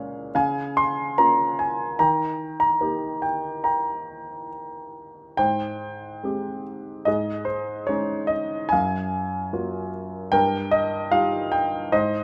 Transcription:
Already playing: A#2 G#3 A#3 C#4 C#5 F5
0.35 C#3 F5 G#5
0.77 C6
1.18 A#3 C#4 F4 A#5
1.59 G#5
1.99 D#3 G5 A#5
2.60 A#5
2.81 A#3 D#4 G4
3.22 G5
3.64 G5 A#5
5.37 G#2 C5 G5
6.24 G#3 C4 G4
7.05 G#2 G#4 D#5
7.45 C5
7.87 G#3 C#4 D#4 C#5
8.27 D#5
8.69 F#2 F5 G#5
9.53 F#3 A#3 F4
10.32 G2 A#4 G5
10.71 D#5
11.11 G3 D#4 F4 F5
11.52 G5
11.92 G#2 C5 D#5

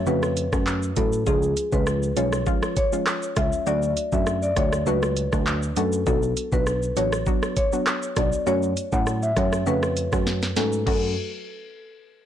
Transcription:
0.06 F2 C#3 A3 C#4 F#4 B4, shaker
0.23 cross-stick, shaker
0.37 closed hi-hat, shaker
0.52 F#2 F#3 A3 C#4 F#4, kick, cross-stick, shaker
0.67 clap, shaker
0.83 shaker
0.96 A2 F#3 A3 C#4 F#4 A4, kick, closed hi-hat, shaker
1.13 shaker
1.26 C#2 F3 G#3 C#4 F4 G#4, kick, shaker
1.43 shaker
1.57 closed hi-hat, shaker
1.72 C#2 F3 G#3 C#4 F4 B4, kick, shaker
1.87 cross-stick, shaker
2.03 shaker
2.16 B1 F3 G#3 C#4 F4 C#5, closed hi-hat, shaker
2.33 cross-stick, shaker
2.46 F3 G#3 C#4 F4, kick, shaker
2.63 cross-stick, shaker
2.77 C#5, kick, closed hi-hat, shaker
2.92 F3 G#3 C#4 F4, shaker
3.07 cross-stick, clap, shaker
3.23 shaker
3.36 C#2 F3 G#3 C#4 F4 E5, kick, cross-stick, closed hi-hat, shaker
3.52 shaker
3.66 D2 F#3 A3 D4 F#4 D5, shaker
3.83 shaker
3.97 closed hi-hat, shaker
4.12 F#2 F#3 A3 D4 F#4 E5, kick, shaker
4.27 cross-stick, shaker
4.43 D5, shaker
4.56 D2 F#3 A3 D4 F#4 C#5, kick, cross-stick, closed hi-hat, shaker
4.73 cross-stick, shaker
4.86 C#2 F#3 A3 D4 F#4 B4, shaker
5.03 cross-stick, shaker
5.17 closed hi-hat, shaker
5.32 D2 F#3 A3 D4 F#4, kick, cross-stick, shaker
5.47 clap, shaker
5.63 shaker
5.76 F#2 F#3 A3 D4 F#4 A4, closed hi-hat, shaker
5.93 shaker
6.06 B1 F#3 B3 D4 F#4 A4, kick, shaker
6.23 shaker
6.37 closed hi-hat, shaker
6.52 B1 F#3 B3 D4 F#4 B4, kick, shaker
6.67 cross-stick, shaker
6.83 shaker
6.96 A1 F#3 B3 D4 F#4 C#5, closed hi-hat, shaker
7.13 cross-stick, shaker
7.26 F#3 B3 D4 F#4, kick, shaker
7.43 cross-stick, shaker
7.57 C#5, kick, closed hi-hat, shaker
7.72 F#3 B3 D4 F#4, shaker
7.87 cross-stick, clap, shaker
8.03 shaker
8.16 B1 F#3 B3 D4 F#4 D5, kick, cross-stick, closed hi-hat, shaker
8.33 shaker
8.46 F#2 F#3 A3 C#4 F#4 C#5, shaker
8.63 shaker
8.77 closed hi-hat, shaker
8.92 A2 F#3 A3 C#4 F#4 F#5, kick, shaker
9.07 cross-stick, shaker
9.23 E5, shaker
9.36 F#2 F#3 A3 C#4 F#4 C#5, kick, cross-stick, closed hi-hat, shaker
9.53 cross-stick, shaker
9.66 F2 C#3 A3 C#4 F#4 B4, shaker
9.83 cross-stick, shaker
9.97 closed hi-hat, shaker
10.12 F#2 F#3 A3 C#4 F#4, kick, cross-stick, shaker
10.27 snare, shaker
10.43 snare, shaker
10.56 G#2 F#3 A3 C#4 F#4 A4, snare, closed hi-hat, shaker
10.73 shaker
10.86 F#2 F#3 A3 C#4 F#4 A4, kick, crash

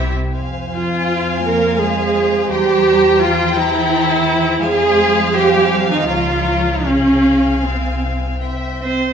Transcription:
Already playing: C2 C3 C4 E4 G4 E5
0.35 F2 C5 F5 G#5
0.73 F3 F4
1.45 A#3 A#4
1.82 G#3 G#4
2.50 E2 G3 G4 G5 A#5
3.21 F3 F4
3.56 E3 E4
4.62 F2 G#3 G#4 C5 F5 G#5
5.34 G3 G4
5.90 D#3 D#4
6.07 C#2 F3 F4 C#5 A#5
6.84 C2 C#3 C#4 F5 G#5
7.62 C3 C4
8.41 C5 E5 G5
8.80 C4 C5

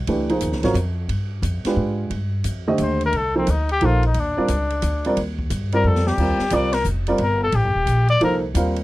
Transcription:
0.07 C#2 E3 A3 D4 G4 B4, ride
0.29 F3 A#3 D#4 G#4 C5, ride
0.41 D#2, hi-hat pedal, ride
0.52 C#2, snare
0.63 G#1 F#3 C4 F4 A#4 C#5, snare, ride
0.74 F2, hi-hat pedal, ride
1.09 G2, ride
1.42 F2, hi-hat pedal, ride
1.64 G#3 D4 F4 G4 B4, muted upright bass stroke, snare, ride
1.76 G#2
2.10 G2, ride
2.44 F2, hi-hat pedal, ride
2.68 D3 A3 G4 C5 D#5
2.78 D#2, hi-hat pedal, ride
2.82 C5
3.01 ride
3.06 A#4
3.13 C2, ride
3.17 A4
3.35 F3 A#3 C4 D#4 A4 C5
3.47 D2 D#4, hi-hat pedal, ride
3.69 G4, ride
3.81 A#1 F3 A#3 D#4 A4 C5, ride
3.85 F4
4.03 D#4, ride
4.14 D#2, ride
4.20 D4
4.37 G3 C4 F4 A#4 D5, muted upright bass stroke
4.48 C#2, hi-hat pedal, ride
4.70 ride
4.82 D2, hi-hat pedal, ride
5.05 G3 C4 F4 A#4 D5, ride
5.17 D#2, ride
5.39 kick
5.50 G2, hi-hat pedal, ride
5.72 G3 C4 F4 A#4 D5, ride
5.84 F2 A4
5.95 snare
6.07 G4, snare
6.18 D#2 G3 C4 F4 A#4 D5, kick, crash
6.39 muted upright bass stroke, snare
6.50 C2 G3 C4 F4 A#4 D5, hi-hat pedal, ride
6.55 D5
6.73 A#4, snare, ride
6.84 F1, hi-hat pedal
7.07 G3 C4 F4 A#4 D5, ride
7.18 G1 A#4, ride
7.43 A4
7.52 A1 G4, ride
7.64 G1
7.75 D#1
7.86 A#1, hi-hat pedal, ride
8.08 D5, ride
8.21 C2 F3 A#3 D#4 A4 A#4 C5, ride
8.55 D#2 G3 C4 F4 A#4 F5, hi-hat pedal, ride
8.76 ride

